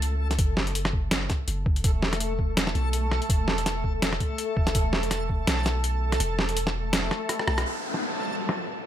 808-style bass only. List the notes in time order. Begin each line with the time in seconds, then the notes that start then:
Already playing: C#2
0.39 F#1
1.48 F#1
1.84 E1
2.75 B1
3.30 E1
4.57 E1
4.75 E1
5.48 B1
6.20 E1
7.48 B1